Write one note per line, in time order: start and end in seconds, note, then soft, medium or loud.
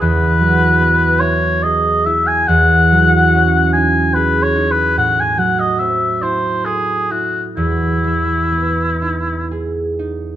0.00 2.47 E2 medium
0.00 1.84 G#3 soft
0.00 0.80 B3 soft
0.00 1.20 E4 soft
0.00 1.62 G#4 soft
0.00 1.21 B4 medium
0.41 2.91 F#3 soft
0.81 4.71 B3 soft
1.20 2.05 E4 soft
1.20 1.65 C#5 medium
1.63 4.14 G#4 soft
1.63 2.07 D#5 medium
2.05 5.96 E4 soft
2.05 2.29 E5 medium
2.27 2.49 G#5 medium
2.48 5.00 E2 medium
2.48 3.72 F#5 medium
2.92 5.37 F#3 medium
3.34 5.00 C#4 soft
3.73 4.54 D#4 soft
3.73 4.16 G#5 medium
4.14 5.00 G#4 soft
4.14 4.44 B4 medium
4.43 4.73 C#5 medium
4.56 4.99 D#4 soft
4.71 4.97 B4 medium
4.97 7.60 A2 medium
4.97 5.22 F#5 medium
5.20 5.40 G#5 medium
5.38 7.60 F#3 soft
5.38 5.61 F#5 medium
5.60 5.81 D#5 medium
5.79 7.60 C4 soft
5.79 6.24 E5 medium
6.22 7.10 E4 soft
6.22 6.66 C5 medium
6.65 7.13 G#4 medium
6.65 7.60 A4 soft
7.11 10.36 E4 soft
7.11 7.43 F#4 medium
7.57 10.36 E2 soft
7.57 9.46 E4 medium
8.04 10.36 E3 soft
8.52 10.36 B3 soft
9.02 9.98 D#4 soft
9.51 10.36 G#4 soft
9.99 10.36 D#4 soft